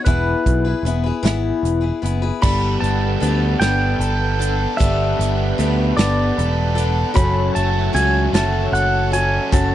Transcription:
0.05 E1 E3 B3 E4 G#4 B4, kick, closed hi-hat
0.46 B1, kick, closed hi-hat
0.65 E4 G#4 B4
0.83 E1 B3 E4 G#4, closed hi-hat
0.88 B4
1.04 E4 G#4 B4
1.23 G#1 E3 B3 E4 G#4 B4, snare, closed hi-hat
1.63 E1, closed hi-hat
1.81 E4 G#4 B4
2.02 F#1 B3 E4 G#4 B4, closed hi-hat
2.22 E4 G#4 B4
2.42 G1 G3 B3 D4 A4 G5 B5, kick, crash
2.80 G1 B3 A5, closed hi-hat
3.20 D2 G3 B3 D4 A4, closed hi-hat
3.60 G1 G3 B3 D4 A4 G5, snare, closed hi-hat
3.99 G1 A4, closed hi-hat
4.39 B3 D4 A4, closed hi-hat
4.77 G1 G3 B3 D4 A4 B4 E5, kick, closed hi-hat
5.19 G1 B3, closed hi-hat
5.58 D2 G3 B3 D4 A4, closed hi-hat
5.97 G1 G3 B3 D4 A4 D5, snare, closed hi-hat
6.38 E1 A4, closed hi-hat
6.75 B3 D4 A4, closed hi-hat
7.14 F#1 F#2 F#3 C#4 F#4 A4 F#5 B5, kick, closed hi-hat
7.55 F#1 A3 A5, closed hi-hat
7.93 C#2 F#3 C#4 F#4 A4 G#5, closed hi-hat
8.33 F#1 F#3 A3 C#4 F#4 A4 A5, snare, closed hi-hat
8.72 F#1 A4 F#5, closed hi-hat
9.12 C#4 F#4 A4 G#5, closed hi-hat
9.51 F#1 F#2 F#3 C#4 F#4 A4 A5, kick, closed hi-hat

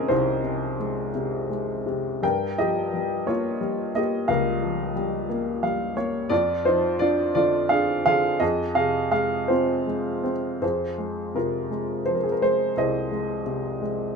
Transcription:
Already playing: F2 C3 D#3 G#3 C4 C#4 D#4 G#4 A#4 C5 D#5 F5
0.08 C2 D#4 C5
0.43 C3
0.80 G#3
1.15 C3
1.49 G#3
1.86 C3
2.23 G2 A#4 G5
2.58 F3 G4 D#5
2.93 G3
3.27 A#3 F4 C#5
3.61 G3
3.95 A#3 G4 D#5
4.28 C#2 A#4 F5
4.63 F3
4.96 G3
5.29 A#3
5.63 G3 F5
5.97 A#3 C#5
6.29 F2 F4 D5
6.65 F3 D#4 C5
6.99 D4 F4 D5
7.35 D3 F4 D5
7.69 D4 G#4 F5
8.06 D3 G#4 F5
8.40 F2 G#4 D#5
8.75 C3 G#4 F5
9.11 G#3 G#4 F5
9.48 C4 F4 C5
9.87 G#3
10.24 C4
10.62 F2 F4 G#4 C5
10.98 G#3
11.34 C3 F4 A#4
11.71 G#3
12.06 F3 C5
12.15 A#4
12.23 G#4
12.32 A#4
12.42 G#3 C5
12.77 C2 G#4 C5 D#5
13.11 G#3
13.46 C3
13.81 G#3

